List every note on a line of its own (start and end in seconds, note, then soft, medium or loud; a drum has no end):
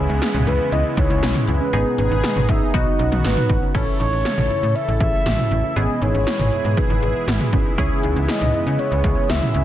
0.00 1.71 C#3 medium
0.00 1.69 E3 medium
0.00 2.71 G#3 medium
0.00 1.71 B3 medium
0.00 1.69 C#4 medium
0.00 1.69 E4 medium
0.00 0.49 G#4 loud
0.00 1.69 G#4 medium
0.09 0.20 C#2 loud
0.09 0.29 D#4 medium
0.22 snare loud
0.22 closed hi-hat medium
0.34 0.46 C#2 loud
0.34 0.45 C#4 medium
0.34 mid tom medium
0.47 0.58 C#2 loud
0.47 0.67 E4 medium
0.47 0.72 B4 medium
0.47 closed hi-hat medium
0.72 0.83 C#2 loud
0.72 0.82 E4 medium
0.72 0.84 D#5 loud
0.72 closed hi-hat medium
0.85 0.95 E4 medium
0.97 1.09 C#2 loud
0.97 1.07 D#4 medium
0.97 1.44 C#5 loud
0.97 kick medium
0.97 closed hi-hat medium
1.10 1.21 C#2 loud
1.10 1.30 E4 medium
1.23 1.34 B1 loud
1.23 snare loud
1.23 closed hi-hat medium
1.35 1.45 E4 medium
1.35 mid tom medium
1.48 1.59 C#2 medium
1.48 1.58 E4 medium
1.48 1.95 B4 loud
1.48 closed hi-hat medium
1.61 1.71 C#4 medium
1.73 1.84 G#1 loud
1.73 2.73 B2 medium
1.73 2.73 D#3 medium
1.73 2.72 B3 medium
1.73 1.83 C#4 loud
1.73 3.73 D#4 medium
1.73 2.72 D#4 medium
1.73 2.73 G#4 medium
1.73 2.72 G#4 medium
1.73 closed hi-hat medium
1.86 1.96 D#4 medium
1.98 2.10 G#1 loud
1.98 2.08 C#4 medium
1.98 2.50 B4 loud
1.98 closed hi-hat medium
2.11 2.22 G#1 loud
2.11 2.31 D#4 medium
2.24 snare loud
2.24 closed hi-hat medium
2.36 2.47 G#1 medium
2.36 2.46 C#4 medium
2.36 mid tom medium
2.49 2.60 G#1 loud
2.49 2.69 D#4 medium
2.49 2.73 E5 loud
2.49 kick medium
2.49 closed hi-hat medium
2.74 2.85 B1 loud
2.74 3.73 C#3 medium
2.74 3.74 F#3 medium
2.74 3.73 B3 medium
2.74 2.84 D#4 medium
2.74 3.73 D#4 medium
2.74 3.73 F#4 medium
2.74 3.21 D#5 medium
2.74 kick loud
2.74 closed hi-hat medium
2.87 2.97 D#4 medium
2.99 3.10 B1 loud
2.99 3.09 C#4 medium
2.99 closed hi-hat medium
3.12 3.23 B1 loud
3.12 3.32 D#4 medium
3.12 mid tom medium
3.24 3.36 G#1 loud
3.24 3.71 B4 medium
3.24 snare loud
3.24 closed hi-hat medium
3.37 3.47 D#4 medium
3.37 mid tom medium
3.49 3.61 A1 medium
3.49 3.60 D#4 medium
3.49 kick loud
3.49 closed hi-hat medium
3.62 3.72 C#4 medium
3.75 3.86 A1 loud
3.75 5.74 C#3 medium
3.75 5.72 C#4 medium
3.75 3.95 C#4 medium
3.75 5.72 E4 medium
3.75 5.72 A4 medium
3.75 3.98 C#5 loud
3.75 kick loud
3.75 closed hi-hat medium
3.75 crash medium
4.00 4.11 A1 loud
4.00 4.10 D#4 medium
4.00 4.77 C#5 loud
4.00 closed hi-hat medium
4.12 4.24 A1 medium
4.12 4.23 C#4 medium
4.25 4.35 E4 medium
4.25 snare loud
4.25 closed hi-hat medium
4.37 4.49 A1 medium
4.37 4.48 D#4 medium
4.37 mid tom medium
4.50 4.70 E4 medium
4.50 closed hi-hat medium
4.63 4.74 A2 medium
4.75 4.86 C#4 medium
4.75 5.00 E5 loud
4.75 closed hi-hat medium
4.88 4.99 A1 loud
4.88 4.98 E4 medium
5.00 5.12 A1 loud
5.00 5.21 G#4 medium
5.00 5.78 E5 loud
5.00 kick medium
5.00 closed hi-hat medium
5.26 5.37 A1 loud
5.26 5.36 F#4 medium
5.26 snare loud
5.26 closed hi-hat medium
5.38 5.49 E4 medium
5.38 mid tom medium
5.51 5.62 A1 loud
5.51 5.61 C#4 medium
5.51 closed hi-hat medium
5.64 5.74 E4 medium
5.76 5.88 G#1 loud
5.76 7.76 B2 medium
5.76 9.64 G#3 medium
5.76 7.74 B3 medium
5.76 5.97 C#4 medium
5.76 7.74 E4 medium
5.76 7.74 G#4 medium
5.76 7.76 G#4 medium
5.76 6.03 D#5 loud
5.76 closed hi-hat medium
6.01 6.13 G#1 loud
6.01 6.12 D#4 medium
6.01 6.79 C#5 loud
6.01 closed hi-hat medium
6.14 6.25 G#1 loud
6.14 6.24 C#4 medium
6.27 6.37 E4 medium
6.27 snare loud
6.27 closed hi-hat medium
6.39 6.51 G#1 medium
6.39 6.50 D#4 medium
6.39 mid tom medium
6.52 6.72 E4 medium
6.52 closed hi-hat medium
6.65 6.76 G#2 medium
6.77 6.87 D#4 medium
6.77 7.53 B4 medium
6.77 kick loud
6.77 closed hi-hat medium
6.90 7.01 G#1 loud
6.90 7.00 E4 medium
7.02 7.14 G#1 medium
7.02 7.23 G#4 medium
7.02 closed hi-hat medium
7.28 7.39 G#1 loud
7.28 7.38 F#4 medium
7.28 snare loud
7.28 closed hi-hat medium
7.40 7.50 E4 medium
7.40 mid tom medium
7.52 7.64 G#1 medium
7.52 7.63 C#4 medium
7.52 kick medium
7.52 closed hi-hat medium
7.66 7.76 D#4 medium
7.78 7.89 C#2 loud
7.78 9.64 C#3 medium
7.78 9.64 B3 medium
7.78 7.98 C#4 medium
7.78 9.64 C#4 medium
7.78 9.64 E4 medium
7.78 9.64 G#4 medium
7.78 kick loud
7.78 closed hi-hat medium
8.03 8.15 C#2 loud
8.03 8.13 D#4 medium
8.03 closed hi-hat medium
8.16 8.27 C#2 loud
8.16 8.26 C#4 medium
8.28 8.39 E4 medium
8.28 8.81 D#5 loud
8.28 snare loud
8.28 closed hi-hat medium
8.41 8.52 C#2 medium
8.41 8.51 D#4 medium
8.41 mid tom medium
8.54 8.74 E4 medium
8.54 closed hi-hat medium
8.66 8.78 C#3 medium
8.79 8.89 C#4 medium
8.79 9.31 C#5 loud
8.79 closed hi-hat medium
8.91 9.03 C#2 loud
8.91 9.02 E4 medium
9.04 9.15 C#2 loud
9.04 9.24 G#4 medium
9.04 kick medium
9.04 closed hi-hat medium
9.29 9.41 C#2 medium
9.29 9.39 F#4 medium
9.29 9.64 E5 loud
9.29 snare loud
9.29 closed hi-hat medium
9.42 9.52 E4 medium
9.42 mid tom medium
9.54 9.64 C#2 medium
9.54 9.64 C#4 medium
9.54 closed hi-hat medium